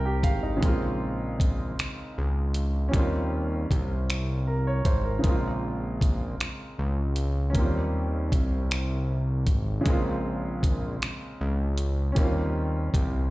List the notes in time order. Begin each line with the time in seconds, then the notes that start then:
Already playing: C2 G3 A#3 C4 C#4 F4 A#4 G5
0.05 G4
0.23 G#1 F5, kick, closed hi-hat
0.43 D#4
0.57 C#3 G#3
0.62 A#1 A#3 C4, kick, closed hi-hat
0.68 F4
1.40 kick, closed hi-hat
1.79 C#2, finger snap, closed hi-hat
2.18 C#2
2.54 closed hi-hat
2.89 G3 C#4
2.94 D#2 A#3 C4, kick, closed hi-hat
2.99 F4
3.71 C2, kick, closed hi-hat
4.10 finger snap, closed hi-hat
4.47 A#4
4.67 C#5
4.85 G#1 C5, kick, closed hi-hat
5.05 A#4
5.19 C#3 G#3
5.24 A#1 A#3 C4, kick, closed hi-hat
5.30 F4
6.01 kick, closed hi-hat
6.40 C#2, finger snap, closed hi-hat
6.79 C#2
7.16 closed hi-hat
7.50 F#3 C#4
7.55 D#2 A#3 C4, kick, closed hi-hat
7.59 G3 F4
8.32 C2, kick, closed hi-hat
8.71 finger snap, closed hi-hat
9.47 G#1, kick, closed hi-hat
9.81 C#3 G#3
9.86 A#1 A#3 C4, kick, closed hi-hat
9.92 F4
10.63 kick, closed hi-hat
11.02 C#2, finger snap, closed hi-hat
11.41 C#2
11.78 closed hi-hat
12.12 G3 C#4
12.16 D#2 A#3, kick, closed hi-hat
12.20 C4 F4
12.94 C2, kick, closed hi-hat